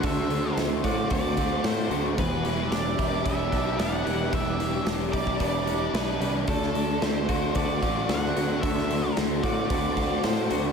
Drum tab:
HH |o-o-o-o-o-o-o-o-|o-o-o-o-o-o-o-o-|o-o-o-o-o-o-o-o-|o-o-o-o-o-o-o-o-|
SD |----o-------o---|----o-------o---|----o-------o---|-o--o-------o---|
BD |o-----o-o-o-----|o-----o-o-o-----|o-----ooo-------|o-----o-o-o-----|

HH |o-o-o-o-o-o-o-o-|
SD |-o--o-------o---|
BD |o-----o-o-o-----|